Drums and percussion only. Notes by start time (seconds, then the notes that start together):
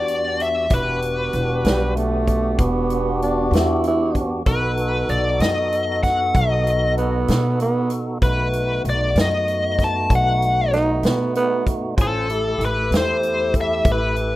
0.08 closed hi-hat
0.40 closed hi-hat
0.70 kick, closed hi-hat
1.02 closed hi-hat
1.33 closed hi-hat
1.65 snare, closed hi-hat
1.97 closed hi-hat
2.27 kick, closed hi-hat
2.58 kick, closed hi-hat
2.90 closed hi-hat
3.22 closed hi-hat
3.53 snare, closed hi-hat
3.84 closed hi-hat
4.15 kick, closed hi-hat
4.46 kick, closed hi-hat
4.77 closed hi-hat
5.09 closed hi-hat
5.40 snare, closed hi-hat
5.72 closed hi-hat
6.03 kick, snare, closed hi-hat
6.35 kick, closed hi-hat
6.67 closed hi-hat
6.98 closed hi-hat
7.28 snare, closed hi-hat
7.60 closed hi-hat
7.90 closed hi-hat
8.22 kick, closed hi-hat
8.53 closed hi-hat
8.85 closed hi-hat
9.16 snare, closed hi-hat
9.48 closed hi-hat
9.79 kick, snare, closed hi-hat
10.10 kick, closed hi-hat
10.42 closed hi-hat
10.73 snare, closed hi-hat
11.03 snare, closed hi-hat
11.35 closed hi-hat
11.67 kick, closed hi-hat
11.98 kick, closed hi-hat
12.30 closed hi-hat
12.61 closed hi-hat
12.92 snare, closed hi-hat
13.23 closed hi-hat
13.54 kick, closed hi-hat
13.85 kick, closed hi-hat
14.16 closed hi-hat